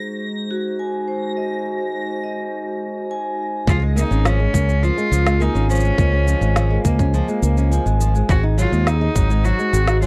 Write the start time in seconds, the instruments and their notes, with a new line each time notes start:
Already playing: ambient pad G#3 D#4 F#4 C5, synth texture A#6
0.51 vibraphone F#4
0.79 vibraphone G#5
1.08 vibraphone C5
1.37 vibraphone D#5
2.23 vibraphone D#5
3.11 vibraphone G#5
3.67 fingered electric bass C#2, nylon-string guitar F3, ambient pad C#4 G#4 A#4 F5, cello F4, vibraphone G#4, kick, shaker
3.82 nylon-string guitar G#3
3.96 nylon-string guitar A#3, cello D#4, shaker
4.11 fingered electric bass G#1, nylon-string guitar C#4, shaker
4.25 nylon-string guitar F3, cello C#4, snare, shaker
4.40 nylon-string guitar G#3
4.54 fingered electric bass C#2, nylon-string guitar A#3, kick, shaker
4.68 nylon-string guitar C#4, shaker
4.83 nylon-string guitar F3, cello F4, shaker
4.98 nylon-string guitar G#3, shaker
5.12 fingered electric bass C#2, nylon-string guitar F3, vibraphone F4, shaker
5.26 nylon-string guitar G#3, snare, shaker
5.40 nylon-string guitar A#3, cello D#4, vibraphone G#5, shaker
5.55 fingered electric bass G#1, nylon-string guitar C#4, shaker
5.69 nylon-string guitar F3, cello C#4, vibraphone C5, shaker
5.75 shaker
5.80 nylon-string guitar G#3, shaker
5.85 shaker
5.98 fingered electric bass C#2, nylon-string guitar A#3, vibraphone D#5, kick, shaker
6.13 nylon-string guitar C#4
6.27 nylon-string guitar F3, shaker
6.41 fingered electric bass G#1, nylon-string guitar G#3, shaker
6.56 nylon-string guitar F3, snare, shaker
6.70 nylon-string guitar G#3
6.85 fingered electric bass C#2, cello A#3, nylon-string guitar A#3, vibraphone D#5, kick, shaker
6.99 nylon-string guitar C#4, kick, shaker
7.14 nylon-string guitar F3, cello A#3, shaker
7.28 nylon-string guitar G#3, shaker
7.42 fingered electric bass C#2, nylon-string guitar A#3, shaker
7.57 nylon-string guitar C#4, shaker
7.71 nylon-string guitar F3, vibraphone G#5, shaker
7.86 fingered electric bass G#1, nylon-string guitar G#3, shaker
8.00 nylon-string guitar F3, shaker
8.15 nylon-string guitar G#3, shaker
8.29 fingered electric bass G#1, nylon-string guitar C4, ambient pad D#4 C5 F#5, cello F#4, vibraphone G#4, kick, shaker
8.43 nylon-string guitar D#4
8.58 nylon-string guitar F#3, cello F4, shaker
8.72 fingered electric bass D#2, nylon-string guitar G#3, shaker
8.87 nylon-string guitar C4, cello D#4, snare, shaker
9.01 nylon-string guitar D#4
9.15 fingered electric bass G#1, nylon-string guitar F#3, kick, shaker
9.30 nylon-string guitar G#3, shaker
9.44 nylon-string guitar F#3, cello F#4, shaker
9.59 nylon-string guitar G#3, shaker
9.73 fingered electric bass G#1, nylon-string guitar C4, vibraphone F#4, shaker
9.87 nylon-string guitar D#4, snare, shaker
10.02 nylon-string guitar F#3, cello F4, vibraphone G#5, shaker